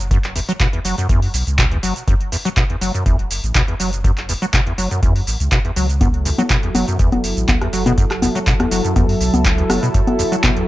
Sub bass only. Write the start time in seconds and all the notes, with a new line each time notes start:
Already playing: F#1
0.85 F#1
1.09 F#2
1.34 B1
1.47 C#2
1.83 F#1
2.81 F#1
3.06 E1
3.31 F#1
3.44 A1
3.55 C#2
3.80 F#1
4.78 F#1
5.03 F#2
5.27 A1
5.40 C#2
5.76 C#2
6.75 F#1
6.99 E1
7.24 F#1
7.37 A1
7.49 C#2
7.73 F#1
8.71 F#1
8.96 F#2
9.21 B1
9.34 C#2
9.70 F#1